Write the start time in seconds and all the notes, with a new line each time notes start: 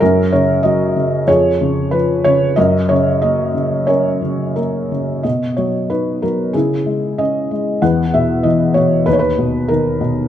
0.00 F#2 C#4 A#4
0.33 C#3 C#5
0.63 F#3 D#5
0.96 C#3
1.27 F2 G#4 C#5
1.61 C#3
1.91 F3 B4
2.24 C#3 C#5
2.56 F#2 A#4 D#5
2.89 C#3 C#5
3.22 A#3 D#5
3.54 C#3
3.87 C#4 A#4 C#5
4.22 C#3
4.56 A#3 A#4
4.92 C#3
5.23 B2 F#4 D#5
5.57 F#3 C#5
5.90 D#4 B4
6.22 F#3 A#4
6.53 C#3 E4 G#4
6.86 G#3
7.18 C#4 D#5
7.51 G#3
7.82 E2 B4 F#5
8.14 B2 E5
8.43 E3 D#5
8.74 B2 C#5
9.06 D#2 D#4 B4
9.13 C#5
9.19 B4
9.38 B2
9.68 D#3 A#4
10.01 B2